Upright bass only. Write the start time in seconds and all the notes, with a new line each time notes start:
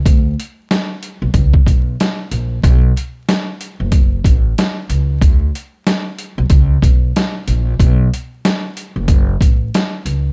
0.06 D2
1.22 B1
1.34 C#2
1.67 B1
2.31 A#1
2.64 B1
3.80 F#1
4.24 A1
4.89 C#2
5.21 D2
6.38 B1
6.50 C#2
6.82 B1
7.47 A#1
7.80 B1
8.96 F#1
9.41 A1
10.05 C#2